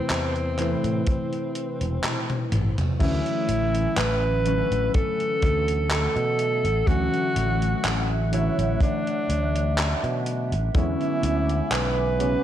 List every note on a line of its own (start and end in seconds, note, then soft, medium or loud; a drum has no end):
0.00 0.52 C3 medium
0.00 0.53 E3 medium
0.00 0.53 A3 medium
0.00 2.52 C4 loud
0.00 0.54 E4 loud
0.00 0.54 B4 medium
0.10 0.74 E2 medium
0.10 clap loud
0.10 closed hi-hat medium
0.36 closed hi-hat soft
0.57 2.94 C3 medium
0.57 2.95 E3 medium
0.57 2.95 A3 medium
0.57 2.96 E4 medium
0.57 2.95 B4 medium
0.57 clap soft
0.57 closed hi-hat medium
0.84 1.01 A2 medium
0.84 closed hi-hat medium
1.07 kick loud
1.07 closed hi-hat medium
1.33 closed hi-hat soft
1.55 closed hi-hat medium
1.81 1.98 E1 medium
1.81 closed hi-hat medium
2.04 clap loud
2.04 closed hi-hat medium
2.04 high tom medium
2.30 closed hi-hat soft
2.30 high tom medium
2.52 2.71 A1 loud
2.52 closed hi-hat medium
2.52 mid tom medium
2.78 closed hi-hat medium
2.78 mid tom medium
2.99 3.19 D2 loud
2.99 4.39 D3 medium
2.99 4.40 E3 medium
2.99 4.40 F#3 medium
2.99 4.41 A3 medium
2.99 4.41 C#4 loud
2.99 3.99 E4 loud
2.99 12.44 E5 medium
2.99 10.71 F#5 medium
2.99 6.84 E6 loud
2.99 kick loud
2.99 closed hi-hat medium
2.99 crash medium
3.26 closed hi-hat soft
3.49 3.86 A1 medium
3.49 closed hi-hat medium
3.75 closed hi-hat medium
3.97 4.61 A1 medium
3.97 4.94 B4 loud
3.97 clap loud
3.97 closed hi-hat medium
4.44 6.81 D3 medium
4.44 6.82 E3 medium
4.44 6.82 F#3 medium
4.44 6.82 A3 medium
4.44 6.83 C#4 medium
4.44 closed hi-hat medium
4.71 4.88 A1 medium
4.71 closed hi-hat medium
4.94 5.87 A4 loud
4.94 kick loud
4.94 closed hi-hat medium
5.20 closed hi-hat soft
5.42 6.06 D2 medium
5.42 kick loud
5.42 closed hi-hat medium
5.68 closed hi-hat medium
5.91 6.89 A4 loud
5.91 clap loud
5.91 closed hi-hat medium
6.16 6.66 B2 loud
6.16 closed hi-hat soft
6.39 closed hi-hat medium
6.65 6.82 A1 medium
6.65 closed hi-hat medium
6.86 7.07 D2 loud
6.86 8.26 D3 medium
6.86 8.27 E3 medium
6.86 8.27 F#3 medium
6.86 8.27 A3 medium
6.86 8.28 C#4 loud
6.86 8.07 F#4 loud
6.86 10.71 F#6 loud
6.86 kick loud
6.86 closed hi-hat medium
7.14 closed hi-hat soft
7.36 7.73 A1 loud
7.36 closed hi-hat medium
7.62 closed hi-hat medium
7.84 8.48 A1 medium
7.84 clap loud
7.84 closed hi-hat medium
8.31 10.68 D3 medium
8.31 10.69 E3 medium
8.31 10.69 F#3 medium
8.31 10.69 A3 medium
8.31 8.78 E4 medium
8.31 10.70 C#5 loud
8.31 closed hi-hat medium
8.58 8.75 A1 medium
8.58 closed hi-hat medium
8.81 10.23 D4 medium
8.81 kick loud
8.81 closed hi-hat medium
9.07 closed hi-hat soft
9.29 9.93 D2 medium
9.29 closed hi-hat medium
9.56 closed hi-hat medium
9.78 clap loud
9.78 closed hi-hat medium
10.03 10.53 B2 loud
10.03 closed hi-hat soft
10.26 closed hi-hat medium
10.52 10.69 A1 medium
10.52 closed hi-hat medium
10.74 10.94 E2 loud
10.74 12.14 D3 medium
10.74 12.14 F#3 medium
10.74 12.15 G#3 medium
10.74 12.15 B3 medium
10.74 12.15 C#4 loud
10.74 11.68 E4 loud
10.74 12.44 F#5 medium
10.74 12.44 G#5 medium
10.74 12.44 D6 medium
10.74 kick loud
10.74 closed hi-hat medium
11.01 closed hi-hat soft
11.23 11.60 D2 medium
11.23 closed hi-hat medium
11.49 closed hi-hat medium
11.71 12.35 B1 medium
11.71 12.44 B4 medium
11.71 clap loud
11.71 closed hi-hat medium
12.18 12.44 C#3 medium
12.18 12.44 F#3 medium
12.18 12.44 G#3 medium
12.18 12.44 B3 medium
12.18 12.44 C#4 loud
12.18 closed hi-hat medium